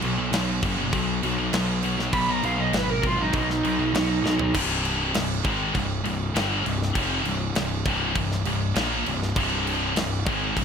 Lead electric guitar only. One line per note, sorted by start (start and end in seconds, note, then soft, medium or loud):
2.13 2.30 B5 loud
2.30 2.44 A#5 medium
2.45 2.59 F5 loud
2.60 2.74 D#5 loud
2.75 2.89 B4 loud
2.90 3.04 A#4 medium
3.07 3.20 F4 medium
3.22 3.35 D#4 loud
3.37 4.53 D#4 loud